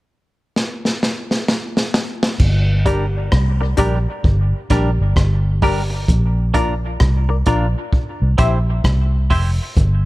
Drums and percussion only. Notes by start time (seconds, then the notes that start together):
0.56 snare
0.85 snare
1.03 snare
1.31 snare
1.48 snare
1.77 snare
1.94 snare
2.23 snare
2.39 kick, crash
2.86 kick, closed hi-hat
3.32 kick, cross-stick
3.77 kick, closed hi-hat
4.24 kick
4.70 kick, cross-stick, closed hi-hat
5.16 kick, cross-stick
5.62 kick, open hi-hat
6.08 kick, hi-hat pedal
6.54 kick, closed hi-hat
7.00 kick, cross-stick
7.46 kick, closed hi-hat
7.93 kick
8.38 kick, closed hi-hat
8.84 kick, cross-stick
9.30 kick, open hi-hat
9.76 kick, hi-hat pedal